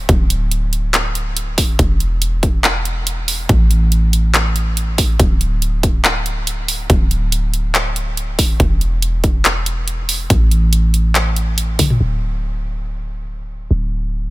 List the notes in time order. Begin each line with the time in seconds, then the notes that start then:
0.09 D1, kick, closed hi-hat
0.30 closed hi-hat
0.51 closed hi-hat
0.73 closed hi-hat
0.94 clap, closed hi-hat
1.15 closed hi-hat
1.37 closed hi-hat
1.58 kick, open hi-hat
1.79 E1, kick, closed hi-hat
2.00 closed hi-hat
2.22 closed hi-hat
2.43 kick, closed hi-hat
2.64 clap, closed hi-hat
2.85 closed hi-hat
3.07 closed hi-hat
3.28 open hi-hat
3.49 A1, kick, closed hi-hat
3.71 closed hi-hat
3.92 closed hi-hat
4.13 closed hi-hat
4.34 clap, closed hi-hat
4.56 closed hi-hat
4.77 closed hi-hat
4.98 kick, open hi-hat
5.20 D1, kick, closed hi-hat
5.41 closed hi-hat
5.62 closed hi-hat
5.83 kick, closed hi-hat
6.05 clap, closed hi-hat
6.26 closed hi-hat
6.47 closed hi-hat
6.68 open hi-hat
6.90 D1, kick, closed hi-hat
7.11 closed hi-hat
7.32 closed hi-hat
7.54 closed hi-hat
7.75 clap, closed hi-hat
7.96 closed hi-hat
8.17 closed hi-hat
8.39 kick, open hi-hat
8.60 E1, kick, closed hi-hat
8.81 closed hi-hat
9.02 closed hi-hat
9.24 kick, closed hi-hat
9.45 clap, closed hi-hat
9.66 closed hi-hat
9.88 closed hi-hat
10.09 open hi-hat
10.30 A1, kick, closed hi-hat
10.51 closed hi-hat
10.73 closed hi-hat
10.94 closed hi-hat
11.15 clap, closed hi-hat
11.36 closed hi-hat
11.58 closed hi-hat
11.79 kick, open hi-hat, high tom
11.90 mid tom
12.00 D1
13.71 D1